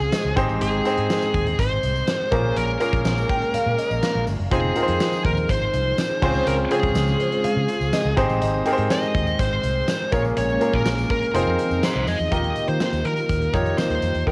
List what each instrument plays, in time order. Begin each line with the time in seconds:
Already playing: string machine C#3 G#3 F4 C5, grand piano C#3 C4 C#4 F4 G#4 C5, lead electric guitar G#4, synth bell G#5
0.00 fingered electric bass C#2, tambourine
0.12 synth bell D#5, snare, closed hi-hat, tambourine
0.25 fingered electric bass C#2
0.36 fingered electric bass G#1, grand piano G#2 C4 D#4 G4 G#4 C5, string machine G5, kick, closed hi-hat, tambourine
0.49 fingered electric bass A1, tambourine
0.61 fingered electric bass G#1, lead electric guitar G#4, closed hi-hat, tambourine
0.85 grand piano C4 D#4 G#4 C5 G5, closed hi-hat, tambourine
0.98 fingered electric bass G#2, closed hi-hat
1.10 snare, closed hi-hat, tambourine
1.23 tambourine
1.34 fingered electric bass D#2, kick, closed hi-hat
1.47 closed hi-hat
1.59 fingered electric bass G#1, lead electric guitar C5, kick, closed hi-hat, tambourine
1.83 fingered electric bass C2, closed hi-hat, tambourine
1.96 tambourine
2.08 snare, closed hi-hat, tambourine
2.32 fingered electric bass A#1, grand piano A#2 A#3 C#4 F4 G#4 A#4, string machine A#3 C#4, kick, closed hi-hat, tambourine
2.56 fingered electric bass A#1, lead electric guitar A#4, closed hi-hat, tambourine
2.80 grand piano A#3 C#4 F4 G#4 A#4, lead electric guitar A#4, closed hi-hat, tambourine
2.93 fingered electric bass A#1, kick, closed hi-hat
3.05 fingered electric bass A#1, snare, closed hi-hat, tambourine
3.18 tambourine
3.29 synth bell G5, kick, closed hi-hat
3.42 closed hi-hat
3.54 synth bell F5, muted fingered electric bass stroke, closed hi-hat, tambourine
3.66 fingered electric bass A#2
3.78 synth bell D#5, closed hi-hat, tambourine
3.91 fingered electric bass A#1, tambourine
4.03 synth bell F5, snare, closed hi-hat, tambourine
4.15 fingered electric bass A#1
4.27 fingered electric bass G1, open hi-hat, tambourine
4.40 fingered electric bass F#1
4.51 fingered electric bass F1, string machine F3 D#4 G#4 C5, grand piano C4 D#4 F4 G#4 C5, lead electric guitar G#4, kick, closed hi-hat, tambourine
4.76 grand piano C4 D#4 F4 G#4 A#4, closed hi-hat, tambourine
4.83 grand piano C5
4.88 fingered electric bass F2, closed hi-hat
5.00 snare, closed hi-hat, tambourine
5.13 tambourine
5.25 fingered electric bass D#2, lead electric guitar A#4, kick, closed hi-hat
5.37 closed hi-hat, tambourine
5.49 fingered electric bass G#1, lead electric guitar C5, kick, closed hi-hat, tambourine
5.73 fingered electric bass C2, closed hi-hat, tambourine
5.98 snare, closed hi-hat, tambourine
6.22 fingered electric bass C#2, string machine C#3 G#3 F4, grand piano C#3 C4 C#4 F4 G#4 C5, kick, tambourine, crash
6.34 tambourine
6.46 fingered electric bass C#2, lead electric guitar A#4, closed hi-hat, tambourine
6.71 grand piano C4 C#4 F4 G#4 C5, lead electric guitar G#4, closed hi-hat, tambourine
6.83 fingered electric bass C#2, kick, closed hi-hat
6.95 fingered electric bass C#2, snare, closed hi-hat, tambourine
7.08 tambourine
7.20 synth bell C5, closed hi-hat
7.32 closed hi-hat
7.44 synth bell F5, muted fingered electric bass stroke, closed hi-hat, tambourine
7.57 fingered electric bass C#3
7.68 closed hi-hat, tambourine
7.81 fingered electric bass C#2, tambourine
7.93 synth bell D#5, snare, closed hi-hat, tambourine
8.05 fingered electric bass C#2
8.17 fingered electric bass G#1, grand piano G#2 C4 D#4 G4 G#4 C5, string machine G#3 G5, kick, closed hi-hat, tambourine
8.29 fingered electric bass A1, tambourine
8.42 fingered electric bass G#1, synth bell D#5, closed hi-hat, tambourine
8.66 grand piano C4 D#4 G4 G#4 A#4, closed hi-hat, tambourine
8.73 grand piano C5
8.78 fingered electric bass G#2, closed hi-hat
8.90 lead electric guitar D#5, snare, closed hi-hat, tambourine
9.03 tambourine
9.15 fingered electric bass D#2, kick, closed hi-hat
9.27 tambourine
9.39 fingered electric bass G#1, lead electric guitar C5, kick, closed hi-hat, tambourine
9.63 fingered electric bass C2, closed hi-hat, tambourine
9.88 snare, closed hi-hat, tambourine
10.12 fingered electric bass A#1, grand piano A#2 A#3 C#4 F4 G#4 A#4, string machine G#3 A#3 C#4, lead electric guitar C#5, kick, closed hi-hat, tambourine
10.25 tambourine
10.37 fingered electric bass A#1, lead electric guitar C#5, closed hi-hat, tambourine
10.49 tambourine
10.61 grand piano A#3 C#4 F4 G#4 A#4, closed hi-hat, tambourine
10.73 fingered electric bass A#1, lead electric guitar A#4, kick, closed hi-hat
10.85 fingered electric bass A#1, snare, closed hi-hat, tambourine
10.98 tambourine
11.10 lead electric guitar A#4, kick, closed hi-hat
11.22 closed hi-hat
11.34 fingered electric bass F1, string machine F3 C4 D#4 G#4, grand piano C4 D#4 F4 G#4 C5, lead electric guitar A#4, closed hi-hat, tambourine
11.46 fingered electric bass F2
11.59 closed hi-hat, tambourine
11.71 fingered electric bass F2, tambourine
11.83 lead electric guitar G#4 C5, snare, closed hi-hat, tambourine
11.95 fingered electric bass C2
12.07 fingered electric bass F2, lead electric guitar D#5, open hi-hat, tambourine
12.20 fingered electric bass E2, tambourine
12.31 fingered electric bass D#2, grand piano D#3 D#4 F4 G4 A#4, string machine D#3 A#3 F4 G4, lead electric guitar D#5, kick, closed hi-hat, tambourine
12.44 closed hi-hat
12.56 closed hi-hat, tambourine
12.68 fingered electric bass D#3, lead electric guitar C5, closed hi-hat
12.80 snare, tambourine
12.93 fingered electric bass D#2, closed hi-hat, tambourine
13.05 fingered electric bass D#3, lead electric guitar A#4, closed hi-hat
13.17 closed hi-hat, tambourine
13.29 fingered electric bass D#2, kick, closed hi-hat, tambourine
13.41 closed hi-hat
13.53 fingered electric bass F2, grand piano D#4 F4 G4 A#4, lead electric guitar C#5, kick, closed hi-hat, tambourine
13.66 closed hi-hat, tambourine
13.78 lead electric guitar C5, snare, tambourine
13.90 fingered electric bass D#2, closed hi-hat
14.02 fingered electric bass F2, closed hi-hat, tambourine
14.15 fingered electric bass E2, closed hi-hat, tambourine
14.27 fingered electric bass D#2, grand piano D#3 D#4 F4 G4 A#4, lead electric guitar A#4, kick, closed hi-hat, tambourine